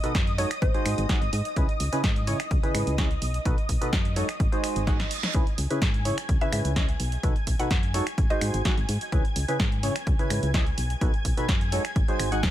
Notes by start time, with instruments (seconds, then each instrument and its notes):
Already playing: analog synth pad D#5 D#6
0.04 synth stab B2 D#4 F#4 A4 B4, closed hi-hat
0.15 fm bass F#2, kick, snare, closed hi-hat
0.27 closed hi-hat
0.38 synth stab G#3 D#4 F#4 A4 C#5, synth pluck C#5, open hi-hat
0.51 finger snap, closed hi-hat
0.62 fm bass G#1, synth pluck C5, kick, closed hi-hat
0.74 synth stab G#3 D#4 F#4 G#4 C5, closed hi-hat
0.86 fm bass G#2, finger snap, open hi-hat
0.98 fm bass G#1, closed hi-hat
1.09 synth stab G#3 D#4 F#4 G#4 F#5, kick, snare, closed hi-hat
1.22 fm bass G#1, closed hi-hat
1.33 fm bass G#2, open hi-hat
1.45 closed hi-hat
1.56 fm bass C#2, synth stab C#3 C#4 E4 G#4 B4, kick, closed hi-hat
1.69 closed hi-hat
1.80 fm bass C#2, open hi-hat
1.92 synth stab C#3 C#4 E4 G#4 B4, closed hi-hat
2.04 fm bass G#2, kick, snare, closed hi-hat
2.16 closed hi-hat
2.27 synth stab C#3 C#4 E4 G#4 C#5, open hi-hat
2.40 finger snap, closed hi-hat
2.51 fm bass C#2, kick, closed hi-hat
2.63 synth stab C#3 C#4 E4 G#4 B4, closed hi-hat
2.75 fm bass G#2, finger snap, open hi-hat
2.87 fm bass C#2, closed hi-hat
2.98 synth stab C#4 E4 G#4 D#5, kick, snare, closed hi-hat
3.11 closed hi-hat
3.22 fm bass B1, open hi-hat
3.34 closed hi-hat
3.45 fm bass B1, synth stab B2 D#4 F#4 A4 B4, kick, closed hi-hat
3.58 closed hi-hat
3.69 fm bass B1, kick, open hi-hat
3.81 synth stab B2 D#4 F#4 A4 B4, closed hi-hat
3.93 fm bass F#2, kick, snare, closed hi-hat
4.05 closed hi-hat
4.16 synth stab G#3 D#4 F#4 A4 C#5, open hi-hat
4.29 finger snap, closed hi-hat
4.40 fm bass G#1, kick, closed hi-hat, reverse cymbal
4.52 synth stab G#3 D#4 F#4 G#4 C5, closed hi-hat
4.64 finger snap, open hi-hat
4.76 fm bass G#1, closed hi-hat
4.87 synth stab G#3 D#4 F#4 G#4 F#5, kick, snare, closed hi-hat
5.00 snare, closed hi-hat
5.11 open hi-hat
5.23 snare, closed hi-hat
5.34 fm bass C#2, synth stab C#3 C#4 E4 G#4 B4, analog synth pad G#5 G#6, kick, closed hi-hat
5.47 closed hi-hat
5.58 fm bass C#2, open hi-hat
5.70 synth stab C#3 C#4 E4 G#4 B4, closed hi-hat
5.82 fm bass G#2, kick, snare, closed hi-hat
5.94 closed hi-hat
6.05 synth stab C#3 C#4 E4 G#4 C#5, open hi-hat
6.18 finger snap, closed hi-hat
6.29 fm bass C#2, kick, closed hi-hat
6.41 synth stab C#3 C#4 E4 G#4 B4, synth pluck E5, closed hi-hat
6.53 fm bass G#2, synth pluck E5, finger snap, open hi-hat
6.65 fm bass C#2, closed hi-hat
6.76 synth stab C#4 E4 G#4 D#5, kick, snare, closed hi-hat
6.89 closed hi-hat
7.00 fm bass B1, open hi-hat
7.12 closed hi-hat
7.23 fm bass B1, synth stab B2 D#4 F#4 A4 B4, kick, closed hi-hat
7.36 closed hi-hat
7.47 fm bass B1, kick, open hi-hat
7.59 synth stab B2 D#4 F#4 A4 B4, synth pluck F#5, closed hi-hat
7.71 fm bass F#2, kick, snare, closed hi-hat
7.83 closed hi-hat
7.94 synth stab G#3 D#4 F#4 A4 C#5, open hi-hat
8.07 finger snap, closed hi-hat
8.18 fm bass G#1, kick, closed hi-hat
8.30 synth stab G#3 D#4 F#4 G#4 C5, synth pluck D#5, closed hi-hat
8.41 fm bass G#2, finger snap, open hi-hat
8.54 fm bass G#1, closed hi-hat
8.65 synth stab G#3 D#4 F#4 G#4 F#5, kick, snare, closed hi-hat
8.78 fm bass G#1, closed hi-hat
8.89 fm bass G#2, open hi-hat
9.01 closed hi-hat
9.12 fm bass C#2, synth stab C#3 C#4 E4 G#4 B4, kick, closed hi-hat
9.25 closed hi-hat
9.36 fm bass C#2, open hi-hat
9.48 synth stab C#3 C#4 E4 G#4 B4, closed hi-hat
9.60 fm bass G#2, kick, snare, closed hi-hat
9.72 closed hi-hat
9.83 synth stab C#3 C#4 E4 G#4 C#5, open hi-hat
9.96 finger snap, closed hi-hat
10.07 fm bass C#2, kick, closed hi-hat
10.19 synth stab C#3 C#4 E4 G#4 B4, closed hi-hat
10.30 fm bass G#2, finger snap, open hi-hat
10.43 fm bass C#2, closed hi-hat
10.54 synth stab C#4 E4 G#4 D#5, kick, snare, closed hi-hat
10.67 closed hi-hat
10.78 fm bass B1, open hi-hat
10.90 closed hi-hat
11.01 fm bass B1, synth stab B2 D#4 F#4 A4 B4, kick, closed hi-hat
11.14 closed hi-hat
11.25 fm bass B1, kick, open hi-hat
11.37 synth stab B2 D#4 F#4 A4 B4, closed hi-hat
11.49 fm bass F#2, kick, snare, closed hi-hat
11.61 closed hi-hat
11.72 synth stab G#3 D#4 F#4 A4 C#5, open hi-hat
11.85 finger snap, closed hi-hat
11.96 fm bass G#1, kick, closed hi-hat
12.08 synth stab G#3 D#4 F#4 G#4 C5, closed hi-hat
12.19 fm bass G#1, finger snap, open hi-hat
12.32 synth stab G#3 D#4 F#4 G#4 F#5, closed hi-hat
12.43 kick, snare, closed hi-hat